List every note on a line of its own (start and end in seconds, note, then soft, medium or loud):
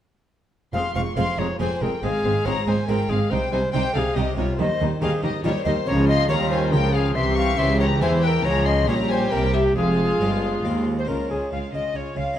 0.73 0.82 F1 medium
0.73 0.93 F2 medium
0.73 0.82 F2 medium
0.73 0.82 G#3 medium
0.73 0.81 C4 medium
0.73 0.93 F5 loud
0.73 0.93 C6 medium
0.95 1.03 F1 medium
0.95 1.03 F2 medium
0.95 1.15 F2 medium
0.95 1.03 G#3 medium
0.95 1.03 C4 medium
0.95 1.01 F5 loud
0.95 1.17 C#6 medium
1.16 1.25 F1 medium
1.16 1.36 F2 medium
1.16 1.25 F2 medium
1.16 1.25 G#3 medium
1.16 1.48 C4 soft
1.16 1.25 C4 medium
1.16 1.48 F4 medium
1.16 1.48 G#4 medium
1.16 1.40 F5 medium
1.16 1.38 C6 loud
1.38 1.46 F1 medium
1.38 1.46 F2 medium
1.38 1.58 F2 medium
1.38 1.47 G#3 medium
1.38 1.47 C4 medium
1.38 1.59 C#5 medium
1.38 1.46 A#5 medium
1.60 1.68 F1 medium
1.60 1.79 F2 medium
1.60 1.68 F2 medium
1.60 1.68 G#3 medium
1.60 1.91 C4 soft
1.60 1.68 C4 medium
1.60 1.91 F4 soft
1.60 1.91 G#4 soft
1.60 1.83 C5 medium
1.60 1.81 G#5 loud
1.81 1.90 F1 medium
1.81 2.01 F2 medium
1.81 1.90 F2 medium
1.81 1.90 G#3 medium
1.81 1.89 C4 medium
1.81 2.02 A#4 medium
1.81 2.02 G5 medium
2.02 2.11 G#1 medium
2.02 2.11 G#2 medium
2.02 2.22 G#2 medium
2.02 2.45 G#3 medium
2.02 2.11 G#3 medium
2.02 2.11 C4 medium
2.02 2.47 G#4 medium
2.02 2.46 F5 loud
2.24 2.33 G#1 medium
2.24 2.32 G#2 medium
2.24 2.44 G#2 medium
2.24 2.33 G#3 medium
2.24 2.32 C4 medium
2.45 2.54 G#1 medium
2.45 2.54 G#2 medium
2.45 2.65 G#2 medium
2.45 2.54 G#3 medium
2.45 2.53 C4 medium
2.45 2.77 C4 soft
2.45 2.77 F4 soft
2.45 2.77 G#4 medium
2.45 2.66 C#5 loud
2.45 2.67 A#5 loud
2.66 2.76 G#1 medium
2.66 2.75 G#2 medium
2.66 2.87 G#2 medium
2.66 2.76 G#3 medium
2.66 2.75 C4 medium
2.66 2.87 C5 medium
2.66 2.89 G#5 medium
2.87 2.97 G#1 medium
2.87 3.08 G#2 medium
2.87 2.97 G#2 medium
2.87 2.97 G#3 medium
2.87 3.19 C4 soft
2.87 2.97 C4 medium
2.87 3.19 F4 soft
2.87 3.20 G#4 soft
2.87 3.11 A#4 medium
2.87 3.09 G5 loud
3.09 3.18 G#1 medium
3.09 3.18 G#2 medium
3.09 3.29 G#2 medium
3.09 3.18 G#3 medium
3.09 3.18 C4 medium
3.09 3.32 G#4 medium
3.09 3.31 F5 medium
3.30 3.39 C2 medium
3.30 3.39 C3 medium
3.30 3.50 C3 medium
3.30 3.39 G3 medium
3.30 3.39 D#4 medium
3.30 3.51 C5 medium
3.30 3.52 G5 loud
3.51 3.60 C2 medium
3.51 3.61 C3 medium
3.51 3.72 C3 medium
3.51 3.61 G3 medium
3.51 3.60 D#4 medium
3.51 3.72 C5 medium
3.51 3.60 G#5 medium
3.73 3.82 C2 medium
3.73 3.82 C3 medium
3.73 3.93 C3 medium
3.73 3.82 G3 medium
3.73 4.04 C4 medium
3.73 3.82 D#4 medium
3.73 4.05 D#4 soft
3.73 4.05 G4 medium
3.73 3.94 C5 loud
3.73 3.94 G5 loud
3.94 4.03 C2 medium
3.94 4.14 C3 medium
3.94 4.03 C3 medium
3.94 4.03 G3 medium
3.94 4.03 D#4 medium
3.94 3.99 A4 medium
3.94 4.16 F5 loud
3.98 4.17 G#4 medium
4.16 4.25 C2 medium
4.16 4.36 C3 medium
4.16 4.24 C3 medium
4.16 4.24 G3 medium
4.16 4.47 C4 medium
4.16 4.24 D#4 medium
4.16 4.47 D#4 medium
4.16 4.36 G4 medium
4.16 4.48 G4 medium
4.16 4.38 D#5 loud
4.37 4.46 C2 medium
4.37 4.45 C3 medium
4.37 4.57 C3 medium
4.37 4.45 G3 medium
4.37 4.46 D#4 medium
4.37 4.61 F4 medium
4.37 4.41 F#4 medium
4.37 4.58 C#5 medium
4.59 4.67 D#2 medium
4.59 4.67 D#3 medium
4.59 4.78 D#3 medium
4.59 4.67 G3 medium
4.59 4.67 D#4 medium
4.59 5.01 C5 medium
4.59 4.82 D#5 medium
4.80 4.88 D#2 medium
4.80 4.88 D#3 medium
4.80 5.00 D#3 medium
4.80 4.88 G3 medium
4.80 4.89 D#4 medium
5.01 5.10 D#2 medium
5.01 5.10 D#3 medium
5.01 5.21 D#3 medium
5.01 5.10 G3 medium
5.01 5.32 C4 medium
5.01 5.10 D#4 medium
5.01 5.33 D#4 medium
5.01 5.33 G4 medium
5.01 5.23 G#4 loud
5.01 5.10 F5 loud
5.23 5.31 D#2 medium
5.23 5.31 D#3 medium
5.23 5.42 D#3 medium
5.23 5.31 G3 medium
5.23 5.31 D#4 medium
5.23 5.30 G4 medium
5.23 5.44 D#5 medium
5.44 5.53 D#2 medium
5.44 5.52 D#3 medium
5.44 5.64 D#3 medium
5.44 5.53 G3 medium
5.44 5.75 C4 soft
5.44 5.53 D#4 medium
5.44 5.75 D#4 medium
5.44 5.50 F4 medium
5.44 5.76 G4 medium
5.44 5.66 C#5 loud
5.65 5.74 D#2 medium
5.65 5.73 D#3 medium
5.65 5.85 D#3 medium
5.65 5.74 G3 medium
5.65 5.74 D#4 medium
5.65 5.87 C5 medium
5.65 5.71 D#5 medium
5.86 6.27 C#2 medium
5.86 6.26 C#3 medium
5.86 6.27 F3 medium
5.86 7.12 F4 medium
5.86 6.07 C#5 loud
5.86 6.09 A#5 medium
6.08 6.28 D#5 loud
6.08 6.29 C6 loud
6.28 6.71 D#2 medium
6.28 6.72 D#3 medium
6.28 6.68 D#3 medium
6.28 6.72 G3 medium
6.28 6.60 C#4 medium
6.28 6.61 F4 medium
6.28 6.61 A#4 medium
6.28 6.34 C#5 loud
6.28 6.51 A#5 loud
6.50 6.74 C5 medium
6.50 6.73 G#5 loud
6.72 7.16 C#2 medium
6.72 7.15 C#3 medium
6.72 7.12 C#3 medium
6.72 7.15 F3 medium
6.72 7.04 C#4 medium
6.72 7.04 F4 medium
6.72 6.93 A#4 medium
6.72 7.04 A#4 medium
6.72 6.93 G5 loud
6.94 7.17 G#4 loud
6.94 7.15 F5 loud
7.15 7.58 C2 medium
7.15 7.58 C3 medium
7.15 7.55 C3 medium
7.15 7.58 E3 medium
7.15 8.00 G4 medium
7.15 7.36 E5 loud
7.15 7.37 C6 loud
7.36 7.59 F5 loud
7.36 7.58 C#6 loud
7.58 8.01 C#2 loud
7.58 8.01 C#3 medium
7.58 7.98 C#3 medium
7.58 8.43 E3 medium
7.58 7.90 C4 medium
7.58 7.90 E4 medium
7.58 7.90 G4 medium
7.58 7.80 E5 loud
7.58 7.80 C6 loud
7.79 7.86 C#5 medium
7.79 8.01 A#5 loud
8.01 8.45 E2 medium
8.01 8.45 E3 medium
8.01 8.41 E3 medium
8.01 8.33 C4 medium
8.01 8.45 E4 medium
8.01 8.33 E4 medium
8.01 8.33 G4 medium
8.01 8.25 C5 loud
8.01 8.09 G#5 loud
8.23 8.28 B4 loud
8.23 8.44 G5 loud
8.27 8.46 A#4 loud
8.44 8.88 C#2 medium
8.44 8.84 C#3 medium
8.44 8.87 C#3 medium
8.44 8.89 F3 medium
8.44 8.84 G#3 medium
8.44 8.85 C#4 medium
8.44 8.85 F4 medium
8.44 8.87 G#4 medium
8.44 8.68 C#5 loud
8.44 8.66 A#5 loud
8.66 8.88 D#5 medium
8.66 8.88 C6 medium
8.88 9.32 A#1 medium
8.88 9.28 A#2 medium
8.88 9.32 A#2 medium
8.88 9.31 G3 medium
8.88 9.28 C#4 medium
8.88 9.28 F4 medium
8.88 9.76 G4 medium
8.88 8.94 C#5 medium
8.88 9.10 A#5 loud
9.10 9.33 C5 medium
9.10 9.32 G#5 loud
9.31 9.75 C2 medium
9.31 9.72 C3 medium
9.31 9.75 C3 medium
9.31 9.75 G3 medium
9.31 9.72 A#3 medium
9.31 9.72 C4 soft
9.31 9.73 E4 medium
9.31 9.55 A#4 medium
9.31 9.54 G5 loud
9.54 9.76 G4 medium
9.54 9.62 E5 medium
9.76 10.20 F1 medium
9.76 10.17 F2 medium
9.76 10.20 F2 medium
9.76 10.87 G#3 medium
9.76 10.86 F4 medium
9.76 10.63 G#4 medium
9.76 10.63 F5 loud
10.21 10.64 G1 medium
10.21 10.64 G2 medium
10.21 10.61 G2 medium
10.21 10.53 G#3 medium
10.21 10.53 C4 soft
10.21 10.53 F4 medium
10.65 11.05 D#2 medium
10.65 11.08 D#2 medium
10.65 10.97 G#3 medium
10.65 10.97 C4 medium
10.65 10.97 F4 medium
10.98 11.10 C5 medium
10.98 11.08 C5 medium
11.05 12.32 G#3 soft
11.05 12.32 C#4 soft
11.05 12.33 F4 soft
11.05 11.29 F4 soft
11.05 11.32 A#4 medium
11.09 11.17 C#2 soft
11.09 11.17 C#3 soft
11.09 11.29 C#3 soft
11.09 11.30 A#4 soft
11.09 11.30 G#5 soft
11.30 11.39 C#2 soft
11.30 11.38 C#3 soft
11.30 11.50 C#3 soft
11.30 11.51 F4 soft
11.30 11.52 G#4 soft
11.30 11.51 G#4 medium
11.30 11.51 G#5 soft
11.52 11.60 C#2 soft
11.52 11.60 C#3 soft
11.52 11.72 C#3 soft
11.52 11.72 F4 soft
11.52 11.58 F5 medium
11.52 11.73 F5 soft
11.52 11.73 G#5 soft
11.73 11.82 C#2 soft
11.73 11.81 C#3 soft
11.73 11.93 C#3 soft
11.73 11.94 F4 soft
11.73 11.94 D#5 soft
11.73 11.97 D#5 medium
11.73 11.94 G#5 soft
11.94 12.03 C#2 soft
11.94 12.02 C#3 soft
11.94 12.14 C#3 soft
11.94 12.15 F4 soft
11.94 12.16 C#5 medium
11.94 12.19 C#5 medium
11.94 12.15 G#5 soft
12.15 12.24 C#2 soft
12.15 12.23 C#3 soft
12.15 12.36 C#3 soft
12.15 12.37 F4 soft
12.15 12.38 F5 soft
12.15 12.39 F5 medium
12.15 12.37 G#5 soft
12.33 12.39 G#3 soft
12.33 12.39 D#4 soft